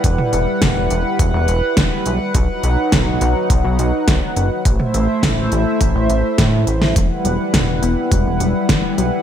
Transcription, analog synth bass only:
\new Staff \with { instrumentName = "Analog synth bass" } { \clef bass \time 4/4 \key e \minor \tempo 4 = 104 e,,16 r16 e,,16 r16 e,,8 e,,16 r16 e,,16 e,,16 e,,16 r16 e,,16 r16 b,,16 r16 | b,,16 r16 b,,16 r16 b,,8 b,,16 r16 b,,16 b,,16 b,,16 r16 b,,16 r16 fis,,16 r16 | a,,16 r16 a,,16 r16 a,,8 a,,16 r16 a,,16 a,,16 a,,16 r16 a,8 a,,8 | e,,16 r16 e,,16 r16 e,,8 e,,16 r16 e,,16 e,,16 e,,16 r16 e,,16 r16 b,,16 r16 | }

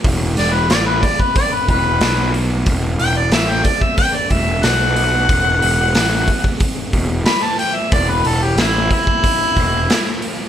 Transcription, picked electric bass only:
\new Staff \with { instrumentName = "Picked electric bass" } { \clef bass \time 4/4 \key e \minor \tempo 4 = 91 e,,8 e,,8 a,,8 r4 e,,8 b,,4 | e,,8 e,,8 a,,8 r4 e,,8 b,,4 | e,,8 e,,8 a,,8 r4 e,,8 r4 | e,,8 e,,8 a,,8 r4 e,,8 r4 | }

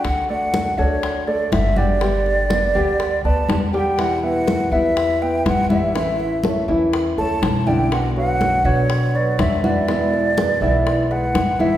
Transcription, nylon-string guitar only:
\new Staff \with { instrumentName = "Nylon-string guitar" } { \time 4/4 \key d \major \tempo 4 = 122 <d a d' fis'>4. <a d' fis'>4. <d a d' fis'>8 <a d' fis'>8 | <d g b g'>4. <g b g'>4. <d g b g'>8 <g b g'>8 | <b, e g b e'>4. <e g b e'>4. <e g b e'>8 <e g b e'>8 | <e a cis' e'>4. <a cis' e'>4. <e a cis' e'>8 <a cis' e'>8 |
<b, d b d' fis'>4. <d b d' fis'>4. <d b d' fis'>8 <d b d' fis'>8 | <b, e gis b e'>4. <e gis b e'>4. <e gis b e'>8 <e gis b e'>8 | }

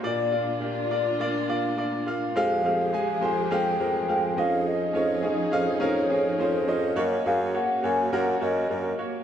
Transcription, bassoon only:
\new Staff \with { instrumentName = "Bassoon" } { \clef bass \time 4/4 \key des \lydian \tempo 4 = 104 r1 | f,8 f,8. r16 f,8 f,8 f,8 f,8 f,8~ | f,8 f,8. r16 f,8 f,8 f,8 f,8 f,8 | ges,8 ges,8. r16 ges,8 ges,8 ges,8 ges,8 r8 | }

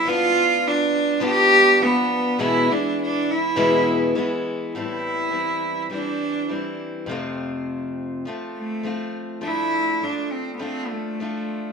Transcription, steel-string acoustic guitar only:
\new Staff \with { instrumentName = "Steel-string acoustic guitar" } { \time 4/4 \key a \minor \tempo 4 = 102 <f b d' f'>2 <f b d' f'>4 <f b d' f'>4 | <e, b, e gis b e'>8 <e gis b e'>4. <e, b, e gis b e'>4 <e gis b e'>4 | <a, e g c' e'>4 <e g c' e'>4 <e g c' e'>4 <e g c' e'>4 | <f, c f a c' f'>2 <f a c' f'>4 <f a c' f'>4 |
<f a d'>4 <f a d' f'>4 <f a d' f'>4 <f a d' f'>4 | }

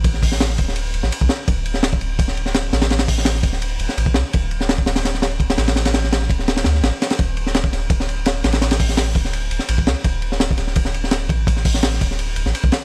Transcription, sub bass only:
\new Staff \with { instrumentName = "Sub bass" } { \clef bass \time 4/4 \key c \major \tempo 4 = 168 a,,4. d,,4 d,,16 a,,16 r16 c,16 r8 | d,,4. d,,2 a,,8~ | a,,4. d,,4 d,,16 r16 a,,8 c,16 r16 | d,,4. d,,2 a,,8~ |
a,,4. d,,4 d,8 a,,16 r8. | d,,4. d,,2 a,,8~ | a,,4. d,,4 d,,16 r16 a,,8 c,16 r16 | d,,4. d,,2 a,,8~ |
a,,4. d,,4 d,,16 a,,16 r16 c,16 r8 | }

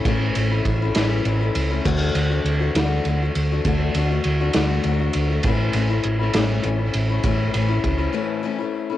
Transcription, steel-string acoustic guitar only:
\new Staff \with { instrumentName = "Steel-string acoustic guitar" } { \time 6/8 \key a \major \tempo 4. = 67 <a, e a cis' e'>8 <e a cis' e'>16 <a cis' e'>8 <a cis' e'>16 <a, e a cis' e'>8 <e a cis' e'>16 <a cis' e'>8 <a cis' e'>16 | <d a d' fis'>8 <d a d' fis'>16 <a d' fis'>8 <a d' fis'>16 <d a d' fis'>8 <d a d' fis'>16 <a d' fis'>8 <a d' fis'>16 | <d a d' fis'>8 <d a d' fis'>16 <a d' fis'>8 <a d' fis'>16 <d a d' fis'>8 <d a d' fis'>16 <a d' fis'>8 <a d' fis'>16 | <a, e a cis' e'>8 <e a cis' e'>16 <a cis' e'>8 <a cis' e'>16 <a, e a cis' e'>8 <e a cis' e'>16 <a cis' e'>8 <a cis' e'>16 |
<a, e a cis' e'>8 <e a cis' e'>16 <a cis' e'>8 <a cis' e'>16 <a, e a cis' e'>8 <e a cis' e'>16 <a cis' e'>8 <a cis' e'>16 | }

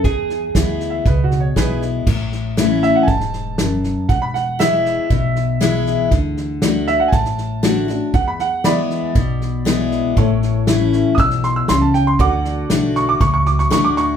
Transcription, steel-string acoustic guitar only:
\new Staff \with { instrumentName = "Steel-string acoustic guitar" } { \clef bass \time 4/4 \key a \major \tempo 4 = 118 << { r4 <e gis b e'>4 r4 <e gis b e'>4 | r4 <e a cis' e'>4 r2 | r4 <e gis b e'>4 r4 <e gis b e'>4 | r4 <d a d' fis'>4 r4 <d a d' fis'>8 <d' fis'>8 |
r4 <e gis b e'>4 r4 <e gis b e'>4 | r4 <e a cis' e'>4 r2 | r4 <d a d' fis'>4 r4 <d a d' fis'>4 | } \\ { e,2 b,2 | a,2 gis,4 fis,4 | e,2 b,2 | d2 a,2 |
e,2 b,2 | a,2 b,4 cis4 | d2 a,2 | } >> }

